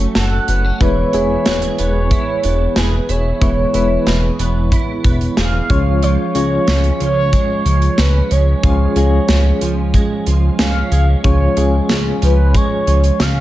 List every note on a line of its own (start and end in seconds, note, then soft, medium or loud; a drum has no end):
0.00 0.80 F#3 medium
0.00 0.83 A3 medium
0.00 0.87 A3 medium
0.00 0.48 C#4 medium
0.00 0.83 C#4 medium
0.00 0.83 F#4 medium
0.00 0.14 A4 medium
0.00 0.83 C#5 medium
0.15 0.39 F#1 medium
0.15 0.87 A4 medium
0.15 0.83 F#5 loud
0.15 snare loud
0.15 closed hi-hat medium
0.48 0.72 F#1 medium
0.48 0.65 B3 medium
0.48 closed hi-hat medium
0.65 0.87 C#4 soft
0.80 1.04 E1 loud
0.80 3.41 E3 medium
0.80 1.10 G#3 medium
0.80 1.11 B3 medium
0.80 1.11 E4 medium
0.80 1.11 B4 medium
0.80 1.79 C#5 loud
0.80 kick medium
0.80 closed hi-hat medium
1.13 1.37 E1 medium
1.13 2.33 G#3 medium
1.13 2.33 B3 medium
1.13 2.10 E4 medium
1.13 2.33 E4 medium
1.13 2.33 G#4 medium
1.13 closed hi-hat medium
1.46 1.69 E1 loud
1.46 1.62 F#4 medium
1.46 snare loud
1.46 closed hi-hat medium
1.62 2.75 G#4 medium
1.62 closed hi-hat soft
1.78 2.14 E1 loud
1.78 2.42 B3 medium
1.78 2.79 C#5 loud
1.78 closed hi-hat medium
2.11 3.08 E4 medium
2.11 kick medium
2.11 closed hi-hat medium
2.44 2.67 E1 loud
2.44 4.38 B3 medium
2.44 closed hi-hat medium
2.76 3.00 E1 loud
2.76 4.06 G#4 medium
2.76 3.12 B4 medium
2.76 snare loud
2.76 closed hi-hat medium
3.09 3.32 E1 loud
3.09 3.73 E4 medium
3.09 5.05 C#5 loud
3.09 closed hi-hat medium
3.41 3.65 E1 loud
3.41 5.70 E3 medium
3.41 3.71 G#3 medium
3.41 3.71 B3 medium
3.41 3.71 E4 medium
3.41 3.72 C#5 medium
3.41 kick loud
3.41 closed hi-hat medium
3.73 3.98 E1 medium
3.73 4.93 G#3 medium
3.73 4.94 B3 medium
3.73 4.94 E4 medium
3.73 4.71 E4 medium
3.73 4.94 B4 medium
3.73 closed hi-hat medium
4.07 4.30 E1 loud
4.07 5.37 G#4 medium
4.07 snare medium
4.07 closed hi-hat medium
4.39 4.75 E1 loud
4.39 5.04 B3 medium
4.39 closed hi-hat medium
4.72 5.76 E4 medium
4.72 kick medium
4.72 closed hi-hat medium
5.04 5.28 E1 loud
5.04 5.76 B3 medium
5.04 kick medium
5.04 closed hi-hat medium
5.21 closed hi-hat soft
5.37 5.61 E1 loud
5.37 8.87 G#4 medium
5.37 6.05 F5 loud
5.37 snare loud
5.37 closed hi-hat medium
5.69 6.17 C#2 medium
5.69 6.01 F3 medium
5.69 6.29 G#3 medium
5.69 6.30 C#4 medium
5.69 6.30 F4 medium
5.69 6.30 C#5 medium
5.69 kick loud
5.69 closed hi-hat medium
6.03 6.99 F3 medium
6.03 7.01 C#5 loud
6.03 closed hi-hat medium
6.35 6.59 C#2 medium
6.35 7.54 G#3 medium
6.35 7.32 G#3 medium
6.35 7.55 C#4 medium
6.35 7.55 F4 medium
6.35 7.55 C#5 medium
6.35 closed hi-hat medium
6.68 6.91 C#2 loud
6.68 7.98 C#4 medium
6.68 snare loud
6.68 closed hi-hat medium
6.84 closed hi-hat soft
7.00 7.36 C#2 loud
7.00 7.65 F3 medium
7.00 8.01 C#5 loud
7.00 closed hi-hat medium
7.33 8.30 G#3 medium
7.33 kick medium
7.33 closed hi-hat medium
7.65 7.89 C#2 medium
7.65 8.63 F3 medium
7.65 closed hi-hat medium
7.82 closed hi-hat soft
7.98 8.22 C#2 medium
7.98 9.29 C#4 medium
7.98 8.34 B4 medium
7.98 snare medium
7.98 closed hi-hat medium
8.31 8.54 C#2 medium
8.31 8.95 G#3 medium
8.31 10.27 C#5 loud
8.31 closed hi-hat medium
8.63 8.87 C#2 loud
8.63 9.60 F3 medium
8.63 8.93 G#3 medium
8.63 8.93 C#4 medium
8.63 8.93 F4 medium
8.63 8.94 G#4 medium
8.63 kick loud
8.63 closed hi-hat medium
8.96 9.19 C#2 medium
8.96 10.15 G#3 medium
8.96 9.93 G#3 medium
8.96 10.16 C#4 medium
8.96 10.16 F4 medium
8.96 10.16 G#4 medium
8.96 closed hi-hat medium
9.28 9.52 C#2 loud
9.28 10.59 C#4 medium
9.28 snare loud
9.28 closed hi-hat medium
9.61 9.97 C#2 medium
9.61 10.25 F3 medium
9.61 closed hi-hat medium
9.94 10.91 G#3 medium
9.94 kick medium
9.94 closed hi-hat medium
10.26 10.50 C#2 medium
10.26 11.23 F3 medium
10.26 closed hi-hat medium
10.59 10.83 C#2 medium
10.59 11.89 C#4 medium
10.59 11.21 F5 loud
10.59 snare loud
10.59 closed hi-hat medium
10.92 11.15 C#2 medium
10.92 11.56 G#3 medium
10.92 closed hi-hat medium
11.24 11.48 C#2 loud
11.24 12.21 F3 medium
11.24 11.54 G#3 medium
11.24 11.54 C#4 medium
11.24 11.54 F4 medium
11.24 11.55 C#5 medium
11.24 11.86 C#5 medium
11.24 kick loud
11.24 closed hi-hat medium
11.56 11.80 C#2 loud
11.56 12.76 G#3 medium
11.56 12.54 G#3 medium
11.56 12.76 C#4 medium
11.56 12.77 F4 medium
11.56 12.77 G#4 medium
11.56 closed hi-hat medium
11.89 12.13 C#2 medium
11.89 13.20 C#4 medium
11.89 snare loud
11.89 closed hi-hat medium
12.22 12.57 C#2 loud
12.22 12.86 F3 medium
12.22 12.57 B4 medium
12.22 closed hi-hat medium
12.55 13.40 G#3 medium
12.55 13.23 C#5 loud
12.55 kick medium
12.55 closed hi-hat medium
12.87 13.11 C#2 medium
12.87 13.40 F3 medium
12.87 closed hi-hat medium
13.04 closed hi-hat soft
13.20 13.40 C#2 medium
13.20 13.40 C#4 medium
13.20 13.40 F5 loud
13.20 snare loud
13.20 closed hi-hat medium